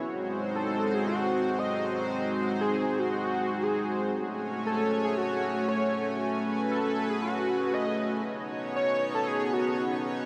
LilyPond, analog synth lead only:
\new Staff \with { instrumentName = "Analog synth lead" } { \time 4/4 \key fis \dorian \tempo 4 = 117 r4 a'8. gis'16 fis'4 dis''8. r16 | r4 gis'8. fis'16 fis'4 gis'8. r16 | r4 a'8. gis'16 fis'4 cis''8. r16 | r4 a'8. gis'16 fis'4 dis''8. r16 |
r4 cis''8. a'16 gis'8 fis'4 r8 | }